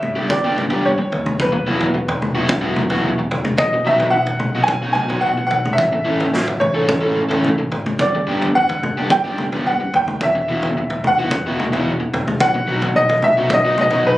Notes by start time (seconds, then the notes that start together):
Already playing: E5
0.03 G1, mid tom
0.16 G3 B3 D4 G4
0.30 G1 D5, muted overdriven electric guitar stroke, kick, floor tom
0.44 G3 B3 D4 G4
0.58 G1, mid tom
0.70 G3 B3 D4 G4, floor tom
0.85 G1 C#5
0.99 muted overdriven electric guitar stroke
1.12 D#2, floor tom
1.26 mid tom
1.40 E1 B4, kick, floor tom
1.53 muted overdriven electric guitar stroke
1.67 E1 F#3 B3 E4 F#4
1.80 floor tom
1.95 E1, muted overdriven electric guitar stroke
2.08 floor tom
2.22 E1, mid tom
2.35 F#3 B3 E4 F#4
2.49 E1, muted overdriven electric guitar stroke, kick, floor tom
2.61 F#3 B3 E4 F#4
2.76 E1, mid tom
2.90 F#3 B3 E4 F#4, floor tom
3.06 E1
3.18 muted overdriven electric guitar stroke
3.31 E1, floor tom
3.45 mid tom
3.57 B1 D#5, kick, floor tom
3.73 muted overdriven electric guitar stroke
3.85 B1 F#3 B3 D#4 F#4 E5
4.00 floor tom
4.10 F#5, muted overdriven electric guitar stroke
4.17 B1
4.27 floor tom
4.40 mid tom
4.44 B1
4.55 F#3 B3 D#4 F#4
4.64 G#5
4.68 B1, muted overdriven electric guitar stroke, kick, floor tom
4.82 F#3 B3 D#4 F#4
4.93 G#5, mid tom
4.99 B1
5.09 F#3 B3 D#4 F#4, floor tom
5.21 F#5
5.26 B1
5.38 muted overdriven electric guitar stroke
5.47 F#5, floor tom
5.52 B1
5.65 mid tom
5.73 E5
5.78 A1, kick, floor tom
5.93 muted overdriven electric guitar stroke
6.05 A1 E3 A3 C#4 A4
6.20 floor tom
6.34 A1, muted overdriven electric guitar stroke, snare
6.47 floor tom
6.60 A1 C#5, mid tom
6.75 E3 A3 C#4 A4
6.89 A1, muted overdriven electric guitar stroke, kick, floor tom
7.01 E3 A3 C#4 A4
7.18 A1
7.29 E3 A3 C#4 A4, floor tom
7.44 A1, mid tom
7.59 muted overdriven electric guitar stroke
7.72 G#1, floor tom
7.86 mid tom
7.99 G1 D5, kick, floor tom
8.15 muted overdriven electric guitar stroke
8.27 G1 G3 B3 D4 G4
8.42 floor tom
8.55 G1 F#5, muted overdriven electric guitar stroke
8.69 floor tom
8.83 G1, mid tom
8.98 G3 B3 D4 G4
9.10 G1 G5, muted overdriven electric guitar stroke, kick, floor tom
9.25 G3 B3 D4 G4
9.38 G1, mid tom
9.52 G3 B3 D4 G4, floor tom
9.66 G1 F#5
9.81 muted overdriven electric guitar stroke
9.94 D#2 G5, floor tom
10.08 mid tom
10.21 E1 E5, kick, floor tom
10.35 muted overdriven electric guitar stroke
10.49 E1 E3 B3 E4 F#4
10.63 floor tom
10.76 E1, muted overdriven electric guitar stroke
10.90 floor tom
11.04 E1 F#5, mid tom
11.19 E3 B3 E4 F#4
11.31 E1, muted overdriven electric guitar stroke, kick, floor tom
11.47 E3 B3 E4 F#4
11.60 E1, mid tom
11.72 E3 B3 E4 F#4, floor tom
11.86 E1
12.00 muted overdriven electric guitar stroke
12.13 E1, floor tom
12.28 mid tom
12.40 B1 F#5, kick, floor tom
12.55 muted overdriven electric guitar stroke
12.68 B1 F#3 B3 D#4 F#4
12.82 floor tom
12.96 B1 D#5, muted overdriven electric guitar stroke
13.09 floor tom
13.22 B1 E5, mid tom
13.38 F#3 B3 D#4 F#4
13.50 B1, muted overdriven electric guitar stroke, kick, floor tom
13.54 D#5
13.65 F#3 B3 D#4 F#4
13.78 B1 D#5, mid tom
13.90 F#3 B3 D#4 F#4, floor tom
14.06 B1 B4